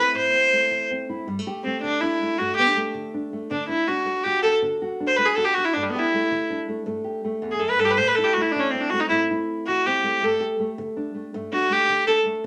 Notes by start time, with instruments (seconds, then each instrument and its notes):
Already playing: nylon-string guitar A3 C4 E4
0.00 viola B4
0.14 nylon-string guitar A2, viola C5
0.33 nylon-string guitar C4
0.52 nylon-string guitar A3
0.71 nylon-string guitar E3
0.91 nylon-string guitar C4
1.09 nylon-string guitar E4
1.27 nylon-string guitar G2 G3
1.39 nylon-string guitar A3
1.47 nylon-string guitar G4
1.64 nylon-string guitar A3, viola C4
1.82 nylon-string guitar D3, viola D4
2.01 nylon-string guitar D4, viola E4
2.22 nylon-string guitar A3
2.38 nylon-string guitar G2 A3, viola F#4
2.56 nylon-string guitar B3, viola G4
2.67 nylon-string guitar D4
2.76 nylon-string guitar A3
2.94 nylon-string guitar D3
3.14 nylon-string guitar D4
3.33 nylon-string guitar A3
3.51 nylon-string guitar D3 D4, viola D4
3.68 nylon-string guitar D4, viola E4
3.88 nylon-string guitar D4, viola F#4
4.05 nylon-string guitar A3
4.23 nylon-string guitar F#4, viola G4
4.42 nylon-string guitar D4, viola A4
4.62 nylon-string guitar D3 D4
4.82 nylon-string guitar F#4
5.00 nylon-string guitar D4
5.07 viola C5
5.16 nylon-string guitar A3, viola B4
5.25 viola G#4
5.35 nylon-string guitar F#4, viola A4
5.45 viola G4
5.54 nylon-string guitar D4, viola F#4
5.65 viola E4
5.74 nylon-string guitar G2 A3, viola D4
5.83 viola G3
5.90 viola B3
5.95 viola E4, nylon-string guitar G4
6.14 nylon-string guitar A3
6.31 nylon-string guitar D3
6.50 nylon-string guitar D4
6.69 nylon-string guitar A3
6.86 nylon-string guitar G2 A3
7.04 nylon-string guitar G4
7.25 nylon-string guitar A3
7.42 nylon-string guitar E2
7.51 viola G#4
7.59 nylon-string guitar F#2, viola A4
7.70 viola B4
7.78 nylon-string guitar G2, viola A4
7.86 viola G4
7.91 viola B4
7.97 nylon-string guitar A2 A3, viola C5
8.08 viola B4
8.15 nylon-string guitar E4, viola A4
8.24 viola G4
8.33 nylon-string guitar A3, viola F#4
8.41 viola E4
8.52 viola D4
8.56 nylon-string guitar E3, viola C#4
8.70 viola C4, nylon-string guitar C4
8.81 viola D4
8.90 nylon-string guitar A3, viola F#4
9.00 viola D#4
9.09 nylon-string guitar A2 A3, viola E4
9.31 nylon-string guitar E4
9.67 nylon-string guitar E3, viola F#4
9.86 nylon-string guitar C4, viola G4
10.04 nylon-string guitar A3
10.22 nylon-string guitar G2 A3, viola A4
10.40 nylon-string guitar G4
10.60 nylon-string guitar A3
10.78 nylon-string guitar D3
10.97 nylon-string guitar D4
11.14 nylon-string guitar A3
11.34 nylon-string guitar G2 A3
11.52 nylon-string guitar D4, viola F#4
11.70 nylon-string guitar A3, viola G4
11.89 nylon-string guitar D3
12.07 nylon-string guitar D4, viola A4
12.25 nylon-string guitar A3